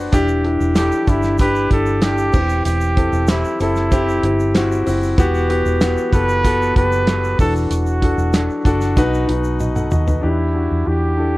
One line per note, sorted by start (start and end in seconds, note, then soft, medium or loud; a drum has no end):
0.00 0.11 F#1 medium
0.00 0.12 D4 loud
0.00 0.15 F#4 loud
0.00 0.15 A4 medium
0.00 0.15 B4 medium
0.00 0.15 C5 loud
0.00 0.11 D5 medium
0.00 0.15 F#5 medium
0.00 0.15 G5 medium
0.00 0.15 A5 medium
0.12 0.57 E1 medium
0.12 1.04 E3 medium
0.12 0.37 D4 loud
0.12 0.38 E4 medium
0.12 0.38 G4 loud
0.12 kick loud
0.12 closed hi-hat medium
0.12 shaker medium
0.29 shaker medium
0.44 0.69 D4 medium
0.44 0.70 E4 medium
0.44 0.70 G4 medium
0.44 closed hi-hat medium
0.60 0.90 E1 medium
0.60 shaker soft
0.75 1.01 D4 medium
0.75 1.01 E4 medium
0.75 1.10 G4 loud
0.75 1.02 A4 medium
0.75 snare loud
0.75 clap medium
0.75 closed hi-hat medium
0.75 shaker medium
0.92 shaker soft
1.07 1.67 G1 medium
1.07 1.32 D4 medium
1.07 1.33 E4 medium
1.07 1.39 E4 medium
1.07 1.33 G4 medium
1.07 kick medium
1.07 closed hi-hat medium
1.07 shaker soft
1.22 snare soft
1.22 shaker soft
1.38 1.64 D4 medium
1.38 1.65 E4 medium
1.38 1.65 G4 loud
1.38 1.69 B4 loud
1.38 kick medium
1.38 closed hi-hat medium
1.38 shaker medium
1.55 shaker soft
1.71 2.30 G1 medium
1.71 1.96 D4 medium
1.71 1.96 E4 medium
1.71 1.97 A4 medium
1.71 2.05 A4 medium
1.71 kick medium
1.71 closed hi-hat medium
1.86 shaker soft
2.01 2.27 D4 medium
2.01 2.27 E4 medium
2.01 2.65 G4 loud
2.01 2.28 A4 medium
2.01 snare loud
2.01 clap medium
2.01 closed hi-hat medium
2.01 shaker medium
2.18 shaker medium
2.33 2.63 E1 medium
2.33 3.25 E3 medium
2.33 2.84 C4 medium
2.33 2.84 E4 medium
2.33 2.85 G4 medium
2.33 kick loud
2.33 crash medium
2.33 shaker medium
2.49 shaker soft
2.65 3.10 E1 medium
2.65 3.31 G4 medium
2.65 closed hi-hat loud
2.65 shaker medium
2.81 shaker medium
2.96 3.22 C4 medium
2.96 3.22 E4 medium
2.96 3.22 A4 medium
2.96 kick medium
2.96 closed hi-hat medium
3.12 3.42 E1 medium
3.12 shaker soft
3.27 3.53 C4 medium
3.27 3.54 E4 medium
3.27 3.61 E4 medium
3.27 3.54 G4 medium
3.27 snare loud
3.27 clap loud
3.27 closed hi-hat medium
3.27 shaker medium
3.44 shaker soft
3.60 4.19 F#1 medium
3.60 3.85 C4 medium
3.60 3.85 E4 medium
3.60 4.83 E4 medium
3.60 3.86 A4 medium
3.60 closed hi-hat medium
3.60 shaker soft
3.75 snare soft
3.75 shaker soft
3.91 4.16 C4 medium
3.91 4.17 E4 medium
3.91 4.17 G4 loud
3.91 kick medium
3.91 closed hi-hat medium
3.91 shaker medium
4.09 shaker soft
4.23 4.83 G1 loud
4.23 4.48 C4 medium
4.23 4.49 E4 medium
4.23 4.49 G4 medium
4.23 closed hi-hat medium
4.40 shaker soft
4.54 4.80 C4 medium
4.54 4.80 E4 medium
4.54 4.81 F#4 medium
4.54 snare loud
4.54 clap medium
4.54 closed hi-hat medium
4.54 shaker medium
4.72 shaker soft
4.86 5.16 F#1 medium
4.86 5.11 C4 medium
4.86 5.12 E4 medium
4.86 5.12 F#4 medium
4.86 open hi-hat medium
4.86 shaker medium
5.03 shaker soft
5.18 5.62 E1 loud
5.18 6.09 E3 medium
5.18 5.43 B3 loud
5.18 5.43 F#4 loud
5.18 5.44 G4 loud
5.18 kick loud
5.18 closed hi-hat medium
5.18 shaker medium
5.34 shaker medium
5.49 5.74 B3 medium
5.49 5.74 F#4 medium
5.49 5.75 G4 loud
5.49 closed hi-hat medium
5.66 5.95 E1 medium
5.66 shaker medium
5.81 6.06 B3 medium
5.81 6.07 F#4 medium
5.81 6.07 G4 medium
5.81 snare loud
5.81 clap medium
5.81 closed hi-hat medium
5.81 shaker medium
5.98 shaker soft
6.12 6.72 F#1 medium
6.12 6.38 B3 medium
6.12 6.38 F#4 medium
6.12 6.38 A4 medium
6.12 6.72 B4 loud
6.12 kick medium
6.12 closed hi-hat medium
6.12 shaker soft
6.29 shaker medium
6.44 6.69 B3 loud
6.44 6.69 F#4 medium
6.44 6.70 A4 loud
6.44 kick medium
6.44 closed hi-hat medium
6.44 shaker medium
6.62 shaker soft
6.76 7.35 F#1 medium
6.76 7.01 B3 medium
6.76 7.01 F#4 medium
6.76 7.02 G4 medium
6.76 7.36 B4 loud
6.76 kick medium
6.76 closed hi-hat medium
6.92 shaker soft
7.07 7.32 B3 medium
7.07 7.32 F#4 medium
7.07 7.33 A4 medium
7.07 snare loud
7.07 clap medium
7.07 closed hi-hat medium
7.07 shaker medium
7.24 shaker medium
7.39 7.69 E1 loud
7.39 8.30 E3 medium
7.39 7.90 D4 medium
7.39 7.90 F#4 medium
7.39 7.54 A4 medium
7.39 7.91 A4 medium
7.39 kick medium
7.39 open hi-hat medium
7.39 shaker medium
7.56 shaker soft
7.70 8.15 E1 medium
7.70 8.93 F#4 medium
7.70 closed hi-hat medium
7.70 shaker medium
7.86 shaker medium
8.01 8.27 D4 medium
8.01 8.27 F#4 medium
8.01 8.28 A4 medium
8.01 kick medium
8.01 closed hi-hat medium
8.18 8.47 E1 medium
8.18 shaker soft
8.33 8.58 D4 medium
8.33 8.59 F#4 medium
8.33 8.59 A4 medium
8.33 snare loud
8.33 clap medium
8.33 closed hi-hat medium
8.33 shaker medium
8.50 shaker soft
8.65 8.95 F#1 medium
8.65 8.90 D4 loud
8.65 8.91 F#4 medium
8.65 8.91 A4 loud
8.65 kick medium
8.65 closed hi-hat medium
8.65 shaker soft
8.81 snare soft
8.81 shaker soft
8.97 9.26 B1 medium
8.97 9.88 B2 medium
8.97 9.22 D#4 loud
8.97 9.22 F#4 loud
8.97 9.23 B4 loud
8.97 kick loud
8.97 closed hi-hat medium
8.97 shaker medium
9.14 shaker soft
9.28 9.88 B1 medium
9.28 9.53 D#4 medium
9.28 9.53 F#4 medium
9.28 9.54 B4 medium
9.28 closed hi-hat medium
9.44 shaker soft
9.60 9.76 F#4 soft
9.60 9.75 D#5 medium
9.60 high tom medium
9.60 shaker medium
9.75 9.91 A4 medium
9.75 9.91 F#5 medium
9.75 mid tom medium
9.75 shaker medium
9.91 10.21 D#2 medium
9.91 10.07 F#4 medium
9.91 10.07 D#5 medium
9.91 mid tom medium
9.91 shaker medium
10.07 10.37 D#4 soft
10.07 10.37 B4 medium
10.07 floor tom medium
10.07 shaker soft
10.21 10.68 E2 medium
10.21 11.14 E3 soft
10.21 10.47 D4 medium
10.21 10.48 E4 medium
10.21 10.89 E4 medium
10.21 10.48 G4 medium
10.54 10.79 D4 medium
10.54 10.80 E4 soft
10.54 10.80 F#4 medium
10.71 10.86 E2 medium
10.85 11.38 E2 medium
10.85 11.11 D4 medium
10.85 11.11 E4 medium
10.85 11.12 G4 medium
10.85 11.38 G4 medium
11.17 11.38 D4 medium
11.17 11.38 E4 medium
11.17 11.38 A4 medium